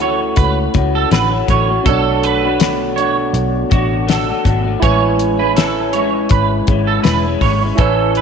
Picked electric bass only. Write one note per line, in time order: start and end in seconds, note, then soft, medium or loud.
0.00 0.33 D2 medium
0.38 0.67 C#2 medium
0.75 1.04 C#2 medium
1.11 1.41 A1 medium
1.48 1.78 A1 medium
1.86 3.30 B1 medium
3.33 3.63 B1 medium
3.72 4.31 A1 medium
4.46 4.75 G#1 medium
4.82 6.27 A1 medium
6.31 6.60 G#1 medium
6.68 6.98 G#1 medium
7.06 7.35 E1 medium
7.41 7.71 G#1 medium
7.79 8.21 A1 medium